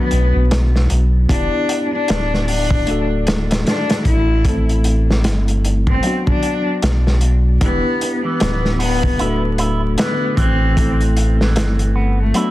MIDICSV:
0, 0, Header, 1, 6, 480
1, 0, Start_track
1, 0, Key_signature, 1, "minor"
1, 0, Tempo, 789474
1, 789, Time_signature, 4, 2, 24, 8
1, 7604, End_track
2, 0, Start_track
2, 0, Title_t, "Tine electric piano"
2, 0, Program_c, 0, 4
2, 0, Control_c, 0, 64, 127
2, 0, Note_on_c, 0, 54, 77
2, 0, Note_on_c, 0, 59, 67
2, 0, Note_on_c, 0, 62, 74
2, 0, Note_on_c, 0, 66, 82
2, 748, Note_off_c, 0, 54, 0
2, 752, Note_off_c, 0, 59, 0
2, 756, Note_off_c, 0, 62, 0
2, 760, Note_off_c, 0, 66, 0
2, 784, Note_on_c, 0, 59, 73
2, 792, Note_on_c, 0, 62, 66
2, 798, Control_c, 0, 64, 0
2, 800, Note_on_c, 0, 64, 74
2, 809, Note_on_c, 0, 67, 81
2, 887, Control_c, 0, 64, 127
2, 1708, Note_off_c, 0, 59, 0
2, 1712, Note_off_c, 0, 62, 0
2, 1716, Note_off_c, 0, 64, 0
2, 1721, Note_off_c, 0, 67, 0
2, 1744, Note_on_c, 0, 57, 82
2, 1752, Note_on_c, 0, 62, 76
2, 1757, Control_c, 0, 64, 0
2, 1760, Note_on_c, 0, 66, 70
2, 1768, Note_on_c, 0, 69, 91
2, 1873, Control_c, 0, 64, 127
2, 2668, Note_off_c, 0, 57, 0
2, 2672, Note_off_c, 0, 62, 0
2, 2676, Note_off_c, 0, 66, 0
2, 2680, Note_off_c, 0, 69, 0
2, 2702, Note_on_c, 0, 57, 78
2, 2710, Note_on_c, 0, 60, 72
2, 2718, Control_c, 0, 64, 0
2, 2718, Note_on_c, 0, 64, 73
2, 2726, Note_on_c, 0, 69, 82
2, 2826, Control_c, 0, 64, 127
2, 3627, Note_off_c, 0, 57, 0
2, 3631, Note_off_c, 0, 60, 0
2, 3635, Note_off_c, 0, 64, 0
2, 3639, Note_off_c, 0, 69, 0
2, 3663, Note_on_c, 0, 54, 76
2, 3670, Note_on_c, 0, 59, 67
2, 3677, Control_c, 0, 64, 0
2, 3680, Note_on_c, 0, 62, 70
2, 3688, Note_on_c, 0, 66, 85
2, 3781, Control_c, 0, 64, 127
2, 4587, Note_off_c, 0, 54, 0
2, 4591, Note_off_c, 0, 59, 0
2, 4596, Note_off_c, 0, 62, 0
2, 4600, Note_off_c, 0, 66, 0
2, 4623, Note_on_c, 0, 59, 74
2, 4632, Note_on_c, 0, 62, 71
2, 4637, Control_c, 0, 64, 0
2, 4640, Note_on_c, 0, 64, 74
2, 4647, Note_on_c, 0, 67, 86
2, 4733, Control_c, 0, 64, 127
2, 5548, Note_off_c, 0, 59, 0
2, 5552, Note_off_c, 0, 62, 0
2, 5556, Note_off_c, 0, 64, 0
2, 5560, Note_off_c, 0, 67, 0
2, 5582, Note_on_c, 0, 57, 76
2, 5590, Note_on_c, 0, 62, 69
2, 5596, Control_c, 0, 64, 0
2, 5599, Note_on_c, 0, 66, 73
2, 5607, Note_on_c, 0, 69, 90
2, 5716, Control_c, 0, 64, 127
2, 6507, Note_off_c, 0, 57, 0
2, 6511, Note_off_c, 0, 62, 0
2, 6516, Note_off_c, 0, 66, 0
2, 6520, Note_off_c, 0, 69, 0
2, 6543, Note_on_c, 0, 57, 80
2, 6550, Note_on_c, 0, 60, 72
2, 6557, Control_c, 0, 64, 0
2, 6558, Note_on_c, 0, 64, 72
2, 6566, Note_on_c, 0, 69, 85
2, 6654, Control_c, 0, 64, 127
2, 7468, Note_off_c, 0, 57, 0
2, 7471, Note_off_c, 0, 60, 0
2, 7475, Note_off_c, 0, 64, 0
2, 7479, Note_off_c, 0, 69, 0
2, 7502, Note_on_c, 0, 54, 80
2, 7511, Note_on_c, 0, 59, 75
2, 7517, Control_c, 0, 64, 0
2, 7519, Note_on_c, 0, 62, 75
2, 7527, Note_on_c, 0, 66, 91
2, 7604, Note_off_c, 0, 54, 0
2, 7604, Note_off_c, 0, 59, 0
2, 7604, Note_off_c, 0, 62, 0
2, 7604, Note_off_c, 0, 66, 0
2, 7604, End_track
3, 0, Start_track
3, 0, Title_t, "Cello"
3, 0, Program_c, 1, 42
3, 0, Note_on_c, 1, 59, 86
3, 187, Note_off_c, 1, 59, 0
3, 793, Note_on_c, 1, 62, 106
3, 1132, Note_off_c, 1, 62, 0
3, 1182, Note_on_c, 1, 62, 90
3, 1485, Note_off_c, 1, 62, 0
3, 1514, Note_on_c, 1, 62, 96
3, 1853, Note_off_c, 1, 62, 0
3, 2231, Note_on_c, 1, 62, 91
3, 2451, Note_off_c, 1, 62, 0
3, 2472, Note_on_c, 1, 64, 95
3, 2811, Note_off_c, 1, 64, 0
3, 3582, Note_on_c, 1, 60, 85
3, 3789, Note_off_c, 1, 60, 0
3, 3819, Note_on_c, 1, 62, 86
3, 4028, Note_off_c, 1, 62, 0
3, 4636, Note_on_c, 1, 59, 110
3, 4974, Note_off_c, 1, 59, 0
3, 5019, Note_on_c, 1, 59, 92
3, 5323, Note_off_c, 1, 59, 0
3, 5359, Note_on_c, 1, 59, 97
3, 5695, Note_off_c, 1, 59, 0
3, 6075, Note_on_c, 1, 59, 92
3, 6293, Note_off_c, 1, 59, 0
3, 6317, Note_on_c, 1, 60, 100
3, 6654, Note_off_c, 1, 60, 0
3, 7419, Note_on_c, 1, 57, 85
3, 7604, Note_off_c, 1, 57, 0
3, 7604, End_track
4, 0, Start_track
4, 0, Title_t, "Clean electric guitar"
4, 0, Program_c, 2, 27
4, 4630, Note_on_c, 2, 52, 70
4, 4766, Note_off_c, 2, 52, 0
4, 5010, Note_on_c, 2, 52, 74
4, 5338, Note_off_c, 2, 52, 0
4, 5345, Note_on_c, 2, 59, 79
4, 5484, Note_off_c, 2, 59, 0
4, 5590, Note_on_c, 2, 64, 84
4, 5726, Note_off_c, 2, 64, 0
4, 5828, Note_on_c, 2, 64, 77
4, 5965, Note_off_c, 2, 64, 0
4, 6067, Note_on_c, 2, 50, 87
4, 6299, Note_off_c, 2, 50, 0
4, 6309, Note_on_c, 2, 52, 102
4, 6540, Note_off_c, 2, 52, 0
4, 6550, Note_on_c, 2, 52, 73
4, 6687, Note_off_c, 2, 52, 0
4, 6933, Note_on_c, 2, 52, 79
4, 7260, Note_off_c, 2, 52, 0
4, 7269, Note_on_c, 2, 59, 81
4, 7406, Note_off_c, 2, 59, 0
4, 7509, Note_on_c, 2, 64, 83
4, 7604, Note_off_c, 2, 64, 0
4, 7604, End_track
5, 0, Start_track
5, 0, Title_t, "Sub bass"
5, 0, Program_c, 3, 38
5, 72, Note_on_c, 3, 35, 79
5, 198, Note_off_c, 3, 35, 0
5, 214, Note_on_c, 3, 35, 93
5, 531, Note_off_c, 3, 35, 0
5, 550, Note_on_c, 3, 35, 85
5, 767, Note_off_c, 3, 35, 0
5, 788, Note_on_c, 3, 28, 94
5, 915, Note_off_c, 3, 28, 0
5, 1272, Note_on_c, 3, 26, 103
5, 1732, Note_off_c, 3, 26, 0
5, 1751, Note_on_c, 3, 26, 87
5, 2212, Note_off_c, 3, 26, 0
5, 2464, Note_on_c, 3, 33, 90
5, 3190, Note_on_c, 3, 31, 99
5, 3199, Note_off_c, 3, 33, 0
5, 3651, Note_off_c, 3, 31, 0
5, 4150, Note_on_c, 3, 35, 99
5, 4611, Note_off_c, 3, 35, 0
5, 4630, Note_on_c, 3, 28, 89
5, 4757, Note_off_c, 3, 28, 0
5, 5113, Note_on_c, 3, 26, 106
5, 5573, Note_off_c, 3, 26, 0
5, 5594, Note_on_c, 3, 26, 93
5, 6053, Note_off_c, 3, 26, 0
5, 6308, Note_on_c, 3, 33, 89
5, 7031, Note_on_c, 3, 31, 97
5, 7040, Note_off_c, 3, 33, 0
5, 7492, Note_off_c, 3, 31, 0
5, 7604, End_track
6, 0, Start_track
6, 0, Title_t, "Drums"
6, 67, Note_on_c, 9, 42, 69
6, 128, Note_off_c, 9, 42, 0
6, 311, Note_on_c, 9, 42, 83
6, 314, Note_on_c, 9, 38, 122
6, 372, Note_off_c, 9, 42, 0
6, 375, Note_off_c, 9, 38, 0
6, 459, Note_on_c, 9, 38, 47
6, 520, Note_off_c, 9, 38, 0
6, 546, Note_on_c, 9, 42, 67
6, 607, Note_off_c, 9, 42, 0
6, 786, Note_on_c, 9, 36, 115
6, 791, Note_on_c, 9, 42, 93
6, 847, Note_off_c, 9, 36, 0
6, 852, Note_off_c, 9, 42, 0
6, 1028, Note_on_c, 9, 42, 75
6, 1089, Note_off_c, 9, 42, 0
6, 1266, Note_on_c, 9, 42, 83
6, 1278, Note_on_c, 9, 38, 114
6, 1326, Note_off_c, 9, 42, 0
6, 1339, Note_off_c, 9, 38, 0
6, 1424, Note_on_c, 9, 38, 40
6, 1484, Note_off_c, 9, 38, 0
6, 1507, Note_on_c, 9, 46, 68
6, 1568, Note_off_c, 9, 46, 0
6, 1644, Note_on_c, 9, 36, 96
6, 1705, Note_off_c, 9, 36, 0
6, 1744, Note_on_c, 9, 42, 85
6, 1805, Note_off_c, 9, 42, 0
6, 1987, Note_on_c, 9, 42, 75
6, 1995, Note_on_c, 9, 38, 115
6, 2048, Note_off_c, 9, 42, 0
6, 2056, Note_off_c, 9, 38, 0
6, 2133, Note_on_c, 9, 42, 80
6, 2141, Note_on_c, 9, 38, 99
6, 2194, Note_off_c, 9, 42, 0
6, 2202, Note_off_c, 9, 38, 0
6, 2229, Note_on_c, 9, 42, 78
6, 2235, Note_on_c, 9, 38, 111
6, 2290, Note_off_c, 9, 42, 0
6, 2296, Note_off_c, 9, 38, 0
6, 2369, Note_on_c, 9, 42, 82
6, 2374, Note_on_c, 9, 38, 106
6, 2430, Note_off_c, 9, 42, 0
6, 2435, Note_off_c, 9, 38, 0
6, 2463, Note_on_c, 9, 36, 90
6, 2464, Note_on_c, 9, 42, 67
6, 2523, Note_off_c, 9, 36, 0
6, 2525, Note_off_c, 9, 42, 0
6, 2703, Note_on_c, 9, 36, 123
6, 2705, Note_on_c, 9, 42, 79
6, 2764, Note_off_c, 9, 36, 0
6, 2766, Note_off_c, 9, 42, 0
6, 2853, Note_on_c, 9, 42, 45
6, 2914, Note_off_c, 9, 42, 0
6, 2944, Note_on_c, 9, 42, 62
6, 3005, Note_off_c, 9, 42, 0
6, 3104, Note_on_c, 9, 38, 54
6, 3165, Note_off_c, 9, 38, 0
6, 3187, Note_on_c, 9, 42, 82
6, 3191, Note_on_c, 9, 38, 110
6, 3248, Note_off_c, 9, 42, 0
6, 3252, Note_off_c, 9, 38, 0
6, 3332, Note_on_c, 9, 42, 42
6, 3393, Note_off_c, 9, 42, 0
6, 3432, Note_on_c, 9, 42, 57
6, 3493, Note_off_c, 9, 42, 0
6, 3568, Note_on_c, 9, 36, 95
6, 3629, Note_off_c, 9, 36, 0
6, 3665, Note_on_c, 9, 42, 88
6, 3726, Note_off_c, 9, 42, 0
6, 3813, Note_on_c, 9, 36, 89
6, 3873, Note_off_c, 9, 36, 0
6, 3907, Note_on_c, 9, 42, 59
6, 3968, Note_off_c, 9, 42, 0
6, 4149, Note_on_c, 9, 42, 92
6, 4157, Note_on_c, 9, 38, 109
6, 4210, Note_off_c, 9, 42, 0
6, 4218, Note_off_c, 9, 38, 0
6, 4299, Note_on_c, 9, 38, 54
6, 4360, Note_off_c, 9, 38, 0
6, 4383, Note_on_c, 9, 42, 63
6, 4444, Note_off_c, 9, 42, 0
6, 4627, Note_on_c, 9, 42, 89
6, 4628, Note_on_c, 9, 36, 111
6, 4688, Note_off_c, 9, 42, 0
6, 4689, Note_off_c, 9, 36, 0
6, 4872, Note_on_c, 9, 42, 67
6, 4933, Note_off_c, 9, 42, 0
6, 5108, Note_on_c, 9, 42, 88
6, 5115, Note_on_c, 9, 38, 123
6, 5169, Note_off_c, 9, 42, 0
6, 5175, Note_off_c, 9, 38, 0
6, 5260, Note_on_c, 9, 38, 40
6, 5321, Note_off_c, 9, 38, 0
6, 5350, Note_on_c, 9, 46, 84
6, 5411, Note_off_c, 9, 46, 0
6, 5492, Note_on_c, 9, 36, 88
6, 5553, Note_off_c, 9, 36, 0
6, 5590, Note_on_c, 9, 42, 85
6, 5650, Note_off_c, 9, 42, 0
6, 5826, Note_on_c, 9, 42, 71
6, 5887, Note_off_c, 9, 42, 0
6, 6066, Note_on_c, 9, 42, 87
6, 6076, Note_on_c, 9, 38, 114
6, 6126, Note_off_c, 9, 42, 0
6, 6137, Note_off_c, 9, 38, 0
6, 6307, Note_on_c, 9, 36, 86
6, 6310, Note_on_c, 9, 42, 67
6, 6367, Note_off_c, 9, 36, 0
6, 6371, Note_off_c, 9, 42, 0
6, 6548, Note_on_c, 9, 36, 104
6, 6550, Note_on_c, 9, 42, 100
6, 6609, Note_off_c, 9, 36, 0
6, 6611, Note_off_c, 9, 42, 0
6, 6691, Note_on_c, 9, 42, 45
6, 6752, Note_off_c, 9, 42, 0
6, 6789, Note_on_c, 9, 42, 66
6, 6849, Note_off_c, 9, 42, 0
6, 6937, Note_on_c, 9, 38, 54
6, 6997, Note_off_c, 9, 38, 0
6, 7027, Note_on_c, 9, 42, 96
6, 7034, Note_on_c, 9, 38, 119
6, 7088, Note_off_c, 9, 42, 0
6, 7094, Note_off_c, 9, 38, 0
6, 7169, Note_on_c, 9, 42, 46
6, 7230, Note_off_c, 9, 42, 0
6, 7504, Note_on_c, 9, 42, 80
6, 7565, Note_off_c, 9, 42, 0
6, 7604, End_track
0, 0, End_of_file